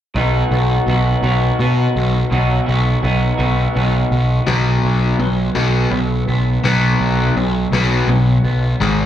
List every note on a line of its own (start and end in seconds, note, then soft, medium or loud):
0.14 0.42 B1 medium
0.14 1.25 B2 medium
0.14 0.86 F#3 medium
0.14 0.52 B3 medium
0.14 0.51 D#4 medium
0.14 0.50 F#4 medium
0.50 0.78 B1 medium
0.50 0.87 B3 soft
0.50 0.88 D#4 medium
0.50 0.89 F#4 medium
0.87 1.14 B1 medium
0.87 1.24 F#3 medium
0.87 1.24 B3 medium
0.87 1.23 D#4 medium
0.87 1.22 F#4 medium
1.23 1.50 B1 medium
1.23 2.30 B2 medium
1.23 1.59 F#3 medium
1.23 1.60 B3 medium
1.23 1.61 D#4 medium
1.23 1.61 F#4 medium
1.59 1.86 B2 medium
1.59 2.30 F#3 medium
1.59 2.31 B3 medium
1.59 2.31 D#4 medium
1.59 2.32 F#4 medium
1.96 2.22 B1 medium
2.30 2.58 B1 medium
2.30 3.03 B2 medium
2.30 3.01 F#3 medium
2.30 2.68 B3 medium
2.30 2.67 D#4 medium
2.30 2.65 F#4 medium
2.66 2.95 B1 medium
2.66 3.02 B3 soft
2.66 3.03 D#4 medium
2.66 3.04 F#4 medium
3.02 3.30 B1 medium
3.02 3.38 F#3 medium
3.02 3.38 B3 medium
3.02 3.37 D#4 medium
3.02 3.36 F#4 medium
3.37 3.66 B1 medium
3.37 4.12 B2 medium
3.37 3.72 F#3 medium
3.37 3.73 B3 medium
3.37 3.75 D#4 medium
3.37 3.75 F#4 medium
3.73 4.03 B1 medium
3.73 4.44 F#3 medium
3.73 4.45 B3 medium
3.73 4.46 D#4 medium
3.73 4.46 F#4 medium
4.12 4.38 B1 medium
4.46 4.77 B1 medium
4.46 6.27 B2 medium
4.46 5.17 B2 medium
4.46 5.17 F#3 medium
4.46 5.18 B3 medium
4.83 5.13 B1 medium
4.83 5.19 F#3 medium
5.19 5.49 B1 medium
5.19 5.52 B2 medium
5.19 5.92 F#3 medium
5.19 5.52 F#3 medium
5.55 5.85 B1 medium
5.55 5.89 B2 medium
5.55 5.89 F#3 medium
5.55 6.27 B3 medium
5.55 5.90 B3 medium
5.91 6.21 B1 medium
5.91 6.24 B2 medium
5.91 6.24 F#3 medium
5.91 6.99 F#3 medium
6.28 6.57 B1 medium
6.28 7.71 B3 medium
6.63 6.93 B1 medium
6.63 8.44 B2 medium
6.63 7.34 B2 medium
6.63 7.34 F#3 medium
6.63 7.34 B3 medium
7.00 7.29 B1 medium
7.00 7.35 F#3 medium
7.36 7.65 B1 medium
7.36 7.69 B2 medium
7.36 8.08 F#3 medium
7.36 7.69 F#3 medium
7.72 8.01 B1 medium
7.72 8.07 B2 medium
7.72 8.07 F#3 medium
7.72 8.44 B3 medium
7.72 8.07 B3 medium
8.08 8.37 B1 medium
8.08 8.41 B2 medium
8.08 8.84 F#3 medium
8.08 8.41 F#3 medium
8.44 8.73 B1 medium
8.44 9.06 B3 medium
8.81 9.06 G#1 medium
8.81 9.06 G#2 medium
8.81 9.06 D#3 medium
8.81 9.06 G#3 medium